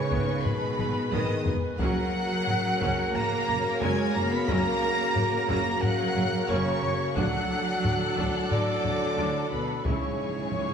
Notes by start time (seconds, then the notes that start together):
Already playing: C#3 D#3 G#3 B3 G#4 B4 C#5 D#5 G#5 C#6
0.11 G#1 D#3 B3, taiko
0.45 B2 B4 B5, taiko low-mid
0.79 G#1 G#3 D#4, taiko low-mid
1.12 G#1 D#3 B3 D#5 D#6, taiko low-mid
1.46 G#1 B3 G#4, taiko low
1.78 F#1 C#3 F#3 A#3 C#4 F#4 A#4 C#5 F#5 F#6, taiko
2.48 F#1 A#3 F#4, taiko low-mid
2.81 F#1 F#3 C#4, taiko
3.14 A#3 A#5 A#6, taiko low-mid
3.48 F#1 A#3 F#4, taiko low-mid
3.80 F#1 F#3 G#3 C#4 G#5 G#6
4.14 F#1 A#3 C#4 A#4 A#5 A#6
4.31 B3 B5 B6
4.47 F#1 F#3 A#3 C#4 A#5 A#6, taiko
5.15 F#1 A#3 F#4, taiko low-mid
5.48 F#1 F#3 A#3 C#4 A#5 A#6, taiko
5.81 F#3 F#5 F#6, taiko low-mid
6.16 F#1 A#3 F#4, taiko low-mid
6.48 F#1 C#3 F#3 C#4 C#5 C#6
6.82 F#1 C#4 A#4
7.14 D2 A2 F#3 D4 A4 D5 F#5 F#6, taiko
7.19 D4 F#4
7.83 D2 A3 F#4, taiko low-mid
8.16 D2 F#3 D4, taiko
8.50 D3 D5 D6, taiko low-mid
8.84 D2 A3 F#4, taiko low-mid
9.17 D2 F#3 D4
9.51 D2 B2 D4 A4 B4 B5
9.83 C#2 G#2 C#3 G#3 C#4 E4 G#4 C#5 G#5 C#6, taiko, cymbal swell
9.94 C#3
10.00 C#3
10.07 C#3
10.14 C#3
10.22 C#3
10.29 C#3
10.37 C#3
10.43 C#3
10.52 C#2 C#3 C#4 G#4, taiko low-mid
10.59 C#3
10.67 C#3